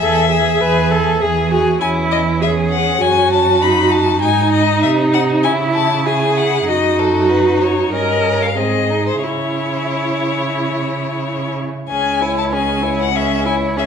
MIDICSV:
0, 0, Header, 1, 5, 480
1, 0, Start_track
1, 0, Key_signature, 4, "minor"
1, 0, Tempo, 603622
1, 1443, Time_signature, 4, 2, 24, 8
1, 3844, Tempo, 616650
1, 5764, Tempo, 638978
1, 6724, Tempo, 663717
1, 9124, Tempo, 625000
1, 10632, End_track
2, 0, Start_track
2, 0, Title_t, "Violin"
2, 0, Program_c, 0, 40
2, 0, Note_on_c, 0, 76, 66
2, 1202, Note_off_c, 0, 76, 0
2, 1439, Note_on_c, 0, 80, 68
2, 1503, Note_off_c, 0, 80, 0
2, 1682, Note_on_c, 0, 75, 64
2, 1746, Note_off_c, 0, 75, 0
2, 1928, Note_on_c, 0, 76, 57
2, 1992, Note_off_c, 0, 76, 0
2, 2153, Note_on_c, 0, 78, 64
2, 2396, Note_on_c, 0, 80, 71
2, 2408, Note_off_c, 0, 78, 0
2, 2641, Note_off_c, 0, 80, 0
2, 2645, Note_on_c, 0, 81, 65
2, 2878, Note_on_c, 0, 83, 63
2, 2890, Note_off_c, 0, 81, 0
2, 3114, Note_on_c, 0, 81, 71
2, 3126, Note_off_c, 0, 83, 0
2, 3346, Note_off_c, 0, 81, 0
2, 3351, Note_on_c, 0, 80, 62
2, 3593, Note_off_c, 0, 80, 0
2, 3599, Note_on_c, 0, 75, 69
2, 3832, Note_off_c, 0, 75, 0
2, 3837, Note_on_c, 0, 76, 59
2, 3899, Note_off_c, 0, 76, 0
2, 4079, Note_on_c, 0, 78, 62
2, 4141, Note_off_c, 0, 78, 0
2, 4311, Note_on_c, 0, 80, 66
2, 4374, Note_off_c, 0, 80, 0
2, 4552, Note_on_c, 0, 81, 59
2, 4792, Note_off_c, 0, 81, 0
2, 4797, Note_on_c, 0, 80, 53
2, 5044, Note_on_c, 0, 78, 61
2, 5055, Note_off_c, 0, 80, 0
2, 5282, Note_off_c, 0, 78, 0
2, 5287, Note_on_c, 0, 75, 64
2, 5525, Note_on_c, 0, 69, 56
2, 5537, Note_off_c, 0, 75, 0
2, 5759, Note_on_c, 0, 71, 52
2, 5770, Note_off_c, 0, 69, 0
2, 5996, Note_on_c, 0, 73, 48
2, 6007, Note_off_c, 0, 71, 0
2, 6238, Note_off_c, 0, 73, 0
2, 6243, Note_on_c, 0, 75, 59
2, 6607, Note_on_c, 0, 77, 48
2, 6618, Note_off_c, 0, 75, 0
2, 6714, Note_on_c, 0, 75, 48
2, 6725, Note_off_c, 0, 77, 0
2, 7073, Note_off_c, 0, 75, 0
2, 7077, Note_on_c, 0, 72, 47
2, 7191, Note_off_c, 0, 72, 0
2, 7196, Note_on_c, 0, 73, 50
2, 8858, Note_off_c, 0, 73, 0
2, 9122, Note_on_c, 0, 80, 59
2, 9461, Note_off_c, 0, 80, 0
2, 9495, Note_on_c, 0, 81, 49
2, 9542, Note_off_c, 0, 81, 0
2, 9612, Note_on_c, 0, 80, 55
2, 9960, Note_off_c, 0, 80, 0
2, 9983, Note_on_c, 0, 78, 49
2, 10094, Note_on_c, 0, 76, 57
2, 10106, Note_off_c, 0, 78, 0
2, 10321, Note_off_c, 0, 76, 0
2, 10326, Note_on_c, 0, 80, 51
2, 10387, Note_off_c, 0, 80, 0
2, 10576, Note_on_c, 0, 76, 49
2, 10632, Note_off_c, 0, 76, 0
2, 10632, End_track
3, 0, Start_track
3, 0, Title_t, "Violin"
3, 0, Program_c, 1, 40
3, 10, Note_on_c, 1, 68, 38
3, 245, Note_off_c, 1, 68, 0
3, 256, Note_on_c, 1, 68, 39
3, 482, Note_off_c, 1, 68, 0
3, 487, Note_on_c, 1, 68, 49
3, 722, Note_off_c, 1, 68, 0
3, 731, Note_on_c, 1, 68, 42
3, 963, Note_off_c, 1, 68, 0
3, 972, Note_on_c, 1, 68, 42
3, 1199, Note_off_c, 1, 68, 0
3, 1203, Note_on_c, 1, 68, 44
3, 1438, Note_off_c, 1, 68, 0
3, 1446, Note_on_c, 1, 61, 44
3, 1891, Note_off_c, 1, 61, 0
3, 1919, Note_on_c, 1, 61, 51
3, 2878, Note_on_c, 1, 63, 44
3, 2890, Note_off_c, 1, 61, 0
3, 3357, Note_off_c, 1, 63, 0
3, 3362, Note_on_c, 1, 63, 45
3, 4322, Note_on_c, 1, 64, 55
3, 4334, Note_off_c, 1, 63, 0
3, 4790, Note_off_c, 1, 64, 0
3, 4795, Note_on_c, 1, 64, 44
3, 5270, Note_off_c, 1, 64, 0
3, 5277, Note_on_c, 1, 63, 45
3, 6233, Note_on_c, 1, 61, 46
3, 6244, Note_off_c, 1, 63, 0
3, 6713, Note_off_c, 1, 61, 0
3, 6718, Note_on_c, 1, 60, 34
3, 6956, Note_on_c, 1, 63, 34
3, 6967, Note_off_c, 1, 60, 0
3, 7187, Note_off_c, 1, 63, 0
3, 7191, Note_on_c, 1, 64, 33
3, 8942, Note_off_c, 1, 64, 0
3, 9127, Note_on_c, 1, 68, 37
3, 9369, Note_on_c, 1, 73, 33
3, 9380, Note_off_c, 1, 68, 0
3, 9606, Note_on_c, 1, 68, 37
3, 9618, Note_off_c, 1, 73, 0
3, 9842, Note_on_c, 1, 73, 38
3, 9853, Note_off_c, 1, 68, 0
3, 10078, Note_off_c, 1, 73, 0
3, 10083, Note_on_c, 1, 68, 44
3, 10315, Note_on_c, 1, 73, 37
3, 10326, Note_off_c, 1, 68, 0
3, 10563, Note_on_c, 1, 68, 36
3, 10575, Note_off_c, 1, 73, 0
3, 10632, Note_off_c, 1, 68, 0
3, 10632, End_track
4, 0, Start_track
4, 0, Title_t, "Viola"
4, 0, Program_c, 2, 41
4, 7, Note_on_c, 2, 69, 47
4, 240, Note_off_c, 2, 69, 0
4, 245, Note_on_c, 2, 68, 48
4, 485, Note_on_c, 2, 71, 56
4, 497, Note_off_c, 2, 68, 0
4, 726, Note_on_c, 2, 69, 54
4, 738, Note_off_c, 2, 71, 0
4, 968, Note_on_c, 2, 68, 48
4, 979, Note_off_c, 2, 69, 0
4, 1203, Note_on_c, 2, 66, 50
4, 1215, Note_off_c, 2, 68, 0
4, 1439, Note_off_c, 2, 66, 0
4, 1444, Note_on_c, 2, 64, 59
4, 1919, Note_on_c, 2, 68, 48
4, 1931, Note_off_c, 2, 64, 0
4, 2393, Note_off_c, 2, 68, 0
4, 2397, Note_on_c, 2, 66, 59
4, 3342, Note_off_c, 2, 66, 0
4, 3359, Note_on_c, 2, 63, 60
4, 4316, Note_on_c, 2, 64, 57
4, 4328, Note_off_c, 2, 63, 0
4, 4800, Note_on_c, 2, 68, 51
4, 4812, Note_off_c, 2, 64, 0
4, 5280, Note_on_c, 2, 66, 54
4, 5292, Note_off_c, 2, 68, 0
4, 6233, Note_off_c, 2, 66, 0
4, 6238, Note_on_c, 2, 70, 53
4, 6715, Note_off_c, 2, 70, 0
4, 6726, Note_on_c, 2, 68, 41
4, 7206, Note_on_c, 2, 64, 37
4, 7217, Note_off_c, 2, 68, 0
4, 8893, Note_off_c, 2, 64, 0
4, 9124, Note_on_c, 2, 61, 39
4, 9366, Note_on_c, 2, 64, 36
4, 9378, Note_off_c, 2, 61, 0
4, 9604, Note_on_c, 2, 61, 37
4, 9616, Note_off_c, 2, 64, 0
4, 9836, Note_on_c, 2, 64, 36
4, 9848, Note_off_c, 2, 61, 0
4, 10072, Note_off_c, 2, 64, 0
4, 10076, Note_on_c, 2, 61, 42
4, 10320, Note_on_c, 2, 64, 37
4, 10332, Note_off_c, 2, 61, 0
4, 10560, Note_on_c, 2, 61, 39
4, 10572, Note_off_c, 2, 64, 0
4, 10632, Note_off_c, 2, 61, 0
4, 10632, End_track
5, 0, Start_track
5, 0, Title_t, "Cello"
5, 0, Program_c, 3, 42
5, 10, Note_on_c, 3, 40, 49
5, 433, Note_off_c, 3, 40, 0
5, 493, Note_on_c, 3, 40, 53
5, 913, Note_off_c, 3, 40, 0
5, 974, Note_on_c, 3, 40, 51
5, 1391, Note_off_c, 3, 40, 0
5, 1446, Note_on_c, 3, 40, 49
5, 2371, Note_off_c, 3, 40, 0
5, 2399, Note_on_c, 3, 42, 48
5, 3362, Note_on_c, 3, 44, 53
5, 3374, Note_off_c, 3, 42, 0
5, 3847, Note_on_c, 3, 48, 46
5, 3859, Note_off_c, 3, 44, 0
5, 4317, Note_on_c, 3, 49, 50
5, 4329, Note_off_c, 3, 48, 0
5, 5273, Note_off_c, 3, 49, 0
5, 5278, Note_on_c, 3, 42, 48
5, 6209, Note_off_c, 3, 42, 0
5, 6235, Note_on_c, 3, 43, 42
5, 6719, Note_on_c, 3, 44, 37
5, 6730, Note_off_c, 3, 43, 0
5, 7199, Note_off_c, 3, 44, 0
5, 7203, Note_on_c, 3, 49, 38
5, 8948, Note_off_c, 3, 49, 0
5, 9122, Note_on_c, 3, 37, 43
5, 10632, Note_off_c, 3, 37, 0
5, 10632, End_track
0, 0, End_of_file